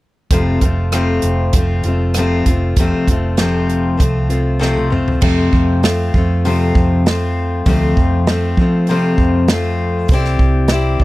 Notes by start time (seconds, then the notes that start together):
0.31 F1 F2 C3 F3 A3 C4 F4, kick, closed hi-hat
0.61 F1 F3 A3 C4 F4, kick, closed hi-hat
0.92 F2 C3 F3 A3 C4 F4, cross-stick, closed hi-hat
1.22 F1, closed hi-hat
1.53 F1 F3 A3, kick, closed hi-hat
1.57 C4 F4
1.84 F1 C4 F4, closed hi-hat
1.88 F3 A3
2.14 F2 C3 F3, cross-stick, closed hi-hat
2.18 A3 C4 F4
2.46 F1 A3 C4 F4, kick, closed hi-hat
2.50 F3
2.76 F1 F2 C3 F3 A3 C4, kick, closed hi-hat
2.81 F4
3.08 F1 A3 C4 F4, kick, closed hi-hat
3.13 F3
3.37 F2 C3 F3 A3 C4 F4, snare, closed hi-hat
3.70 closed hi-hat
3.97 C2 F3 A3 C4 F4, kick, closed hi-hat
4.29 F3 A3 C4 F4, closed hi-hat
4.59 F2 C3 F3 A3 C4 F4, snare
4.77 high tom
4.90 F3 A3 C4 F4, mid tom
5.08 floor tom
5.21 F2 C3 F3 A3 C4 F4, kick, crash
5.53 F2, kick
5.83 F3 A3 C4 F4, snare, open hi-hat
6.14 F2 F3 A3 C4 F4, kick
6.45 F2 C3 F3 A3 C4 F4, open hi-hat
6.75 F2, kick
7.06 F3 A3 C4 F4, snare, open hi-hat
7.66 D2 F2 C3 F3 A3 C4 F4, kick, open hi-hat
7.97 F2, kick
8.27 F3 A3 C4 F4, snare, open hi-hat
8.57 F3 A3 C4 F4, kick
8.87 F2 C3 F3 A3 C4 F4, open hi-hat
9.18 F2, kick
9.48 F3 A3, snare, open hi-hat
9.52 C4 F4
10.08 C2 C4, kick, open hi-hat
10.13 E4 G4 D5
10.25 snare
10.39 C2, kick
10.68 C4 E4, snare, open hi-hat
10.73 G4 D5
11.00 C2 D5, kick